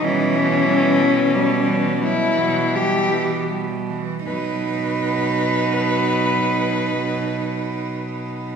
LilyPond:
<<
  \new Staff \with { instrumentName = "Cello" } { \time 3/4 \key b \major \tempo 4 = 42 cis'4. e'8 g'8 r8 | b'2. | }
  \new Staff \with { instrumentName = "Cello" } { \clef bass \time 3/4 \key b \major g16 e16 g16 e16 g16 e16 g16 e16 g16 e16 g16 e16 | dis'2. | }
  \new Staff \with { instrumentName = "Cello" } { \clef bass \time 3/4 \key b \major e4 g8 fis8 e8 r8 | fis2. | }
  \new Staff \with { instrumentName = "Cello" } { \clef bass \time 3/4 \key b \major b,2. | b,2. | }
>>